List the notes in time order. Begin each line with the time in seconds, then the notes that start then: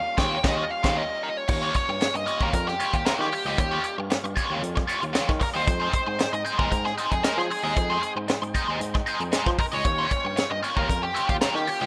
Already playing: G3 A#3 C#4 F4 F5
0.17 D#2 F4 G4 C#5 G5, kick, snare
0.44 D#2 F4 G4 C#5 D#5, kick, snare
0.71 F5
0.83 D#2 F4 G4 C#5, kick, snare, crash
0.97 D#5
1.23 A#4
1.37 C#5
1.48 D#2 G3 A#3 C#4 F4, muted overdriven electric guitar stroke, kick, crash
1.62 F4 G4 C#5
1.74 C#5, muted overdriven electric guitar stroke, kick, closed hi-hat
1.89 G2, muted overdriven electric guitar stroke
2.01 G2, muted overdriven electric guitar stroke, snare, closed hi-hat
2.14 G2 D#5, muted overdriven electric guitar stroke, closed hi-hat
2.26 F4 G4 C#5, closed hi-hat
2.40 D#2 F4 G4 A#4 C#5, kick
2.53 F2 A#4, kick, closed hi-hat
2.67 G4, muted overdriven electric guitar stroke, snare
2.80 F4 G4 C#5, closed hi-hat
2.93 D#2 G4, muted overdriven electric guitar stroke, kick, closed hi-hat
3.06 F4 G4 A#4 C#5, snare, closed hi-hat
3.19 D#3 G4, snare
3.32 muted overdriven electric guitar stroke, open hi-hat
3.45 C#2 F4 G4 D#5
3.58 D#2, muted overdriven electric guitar stroke, kick, closed hi-hat
3.71 F4 G4 C#5
3.84 muted overdriven electric guitar stroke, closed hi-hat
3.98 G2, muted overdriven electric guitar stroke
4.10 G2, muted overdriven electric guitar stroke, snare, closed hi-hat
4.24 G2, muted overdriven electric guitar stroke, closed hi-hat
4.36 F4 G4 C#5, kick, closed hi-hat
4.50 D#2 F4 G4 C#5
4.62 F2, closed hi-hat
4.75 muted overdriven electric guitar stroke, kick, snare
4.87 F4 G4 C#5, closed hi-hat
5.01 D#2, muted overdriven electric guitar stroke, closed hi-hat
5.13 F4 G4 C#5, snare, closed hi-hat
5.29 D#3, kick, snare
5.40 A#4, muted overdriven electric guitar stroke, kick, open hi-hat
5.54 D#2 F4 G4 C5 D#5
5.66 F2 G#3 C4 D#4 G5, muted overdriven electric guitar stroke, kick, closed hi-hat
5.80 D#4 G#4 C5
5.93 C5, muted overdriven electric guitar stroke, kick, closed hi-hat
6.06 G#2, muted overdriven electric guitar stroke
6.19 G#2, muted overdriven electric guitar stroke, snare, closed hi-hat
6.33 G#2 D#5, muted overdriven electric guitar stroke, closed hi-hat
6.45 D#4 G#4 C5, closed hi-hat
6.58 D#2 D#4 G#4 A#4 C5, kick
6.71 G#2 A#4, kick, closed hi-hat
6.85 G#4, muted overdriven electric guitar stroke, snare
6.98 D#4 G#4 C5, closed hi-hat
7.11 F2 G#4, muted overdriven electric guitar stroke, kick, closed hi-hat
7.23 D#4 G#4 A#4 C5, snare, closed hi-hat
7.38 F3 G#4, snare
7.50 muted overdriven electric guitar stroke, open hi-hat
7.64 D#2 D#4 G#4 D#5
7.76 F2, muted overdriven electric guitar stroke, kick, closed hi-hat
7.90 D#4 G#4 C5
8.02 muted overdriven electric guitar stroke, closed hi-hat
8.16 G#2, muted overdriven electric guitar stroke
8.28 G#2, muted overdriven electric guitar stroke, snare, closed hi-hat
8.42 G#2, muted overdriven electric guitar stroke, closed hi-hat
8.54 D#4 G#4 C5, kick, closed hi-hat
8.68 D#2 D#4 G#4 C5
8.80 G#2, closed hi-hat
8.94 muted overdriven electric guitar stroke, kick, snare
9.06 D#4 G#4 C5, closed hi-hat
9.20 F2, muted overdriven electric guitar stroke, closed hi-hat
9.32 D#4 G#4 C5, snare, closed hi-hat
9.46 F3, kick, snare
9.58 A#4, muted overdriven electric guitar stroke, kick, open hi-hat
9.72 C#2 D#4 G#4 C#5 D#5
9.84 D#2 A#3 C#4 F4 G5, muted overdriven electric guitar stroke, kick, closed hi-hat
9.98 F4 G4 C#5
10.11 C#5, muted overdriven electric guitar stroke, kick, closed hi-hat
10.24 G2, muted overdriven electric guitar stroke
10.36 G2, muted overdriven electric guitar stroke, snare, closed hi-hat
10.50 G2 D#5, muted overdriven electric guitar stroke
10.63 F4 G4 C#5, closed hi-hat
10.76 D#2 F4 G4 A#4 C#5, kick
10.89 F2 A#4, kick, closed hi-hat
11.03 G4, muted overdriven electric guitar stroke
11.14 F4 G4 C#5, closed hi-hat
11.29 D#2 G4, muted overdriven electric guitar stroke, kick, closed hi-hat
11.41 F4 G4 A#4 C#5, snare, closed hi-hat
11.55 D#3 G4, snare
11.67 muted overdriven electric guitar stroke, open hi-hat
11.81 C#2 F4 G4 D#5